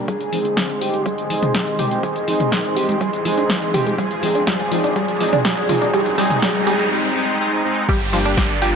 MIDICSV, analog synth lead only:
0, 0, Header, 1, 2, 480
1, 0, Start_track
1, 0, Tempo, 487805
1, 81, Time_signature, 4, 2, 24, 8
1, 8615, End_track
2, 0, Start_track
2, 0, Title_t, "Analog synth lead"
2, 0, Program_c, 0, 81
2, 80, Note_on_c, 0, 68, 101
2, 795, Note_off_c, 0, 68, 0
2, 801, Note_on_c, 0, 67, 88
2, 1022, Note_off_c, 0, 67, 0
2, 1040, Note_on_c, 0, 68, 103
2, 1755, Note_off_c, 0, 68, 0
2, 1761, Note_on_c, 0, 67, 90
2, 1982, Note_off_c, 0, 67, 0
2, 2001, Note_on_c, 0, 68, 104
2, 2715, Note_off_c, 0, 68, 0
2, 2721, Note_on_c, 0, 67, 91
2, 2942, Note_off_c, 0, 67, 0
2, 2960, Note_on_c, 0, 68, 105
2, 3675, Note_off_c, 0, 68, 0
2, 3681, Note_on_c, 0, 67, 98
2, 3902, Note_off_c, 0, 67, 0
2, 3920, Note_on_c, 0, 68, 100
2, 4382, Note_off_c, 0, 68, 0
2, 4401, Note_on_c, 0, 68, 102
2, 4862, Note_off_c, 0, 68, 0
2, 4881, Note_on_c, 0, 68, 105
2, 5342, Note_off_c, 0, 68, 0
2, 5361, Note_on_c, 0, 68, 106
2, 5822, Note_off_c, 0, 68, 0
2, 5842, Note_on_c, 0, 68, 103
2, 6062, Note_off_c, 0, 68, 0
2, 6081, Note_on_c, 0, 68, 102
2, 6302, Note_off_c, 0, 68, 0
2, 6321, Note_on_c, 0, 68, 104
2, 6542, Note_off_c, 0, 68, 0
2, 6561, Note_on_c, 0, 68, 105
2, 6782, Note_off_c, 0, 68, 0
2, 7762, Note_on_c, 0, 67, 107
2, 8387, Note_off_c, 0, 67, 0
2, 8482, Note_on_c, 0, 65, 104
2, 8615, Note_off_c, 0, 65, 0
2, 8615, End_track
0, 0, End_of_file